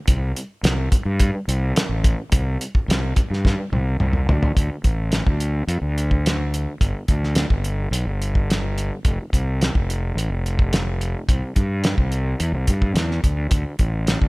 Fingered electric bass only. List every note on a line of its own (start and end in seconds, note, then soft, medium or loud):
0.08 0.32 C2 loud
0.63 0.87 C2 medium
1.05 1.30 G2 medium
1.48 1.72 C2 medium
1.89 2.13 A1 medium
2.32 2.56 C2 medium
2.88 3.12 C2 loud
3.30 3.54 G2 medium
3.72 3.96 C2 medium
4.00 4.26 C2 medium
4.29 4.54 D2 medium
4.56 4.68 D2 medium
4.84 5.20 A1 medium
5.26 5.62 D2 medium
5.67 5.80 F2 medium
5.81 6.65 D2 medium
6.81 6.92 G1 medium
7.08 7.44 D2 medium
7.50 7.86 G1 medium
7.91 8.04 B1 medium
8.05 8.89 G1 medium
9.05 9.17 F1 medium
9.33 9.68 C2 medium
9.75 10.11 F1 medium
10.15 10.28 A1 medium
10.30 11.13 F1 medium
11.29 11.40 C2 medium
11.56 11.92 G2 medium
11.98 12.33 C2 medium
12.40 12.52 E2 medium
12.52 12.65 C2 medium
12.68 12.93 G2 medium
12.94 13.20 E2 medium
13.24 13.49 D2 medium
13.51 13.63 D2 medium
13.79 14.15 A1 medium
14.21 14.28 D2 medium